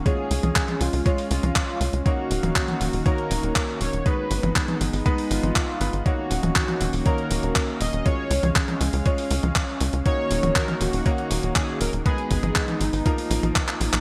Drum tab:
HH |x-oxxxooxooxx-ox|x-oxxxooxxoxx-ox|x-oxxxooxooxx-ox|x-oxxxooxxoxx-ox|
CP |----x-------x---|----x-------x---|----x-------x---|----x-------x---|
T1 |---o-o-----o----|---o-o----------|---o-o-----o----|---o-o----------|
BD |o---o---o---o---|o---o---o---o---|o---o---o---o---|o---o---o---o---|

HH |x-oxxxooxooxx-ox|x-oxxxooxxoxx-ox|xxoxxxooxooxxxox|
CP |----x-------x---|----x-------x---|----x-------xx-x|
T1 |---o-o-----o----|---o-o----------|---o-o-----o----|
BD |o---o---o---o---|o---o---o---o---|o-o-o---o---o---|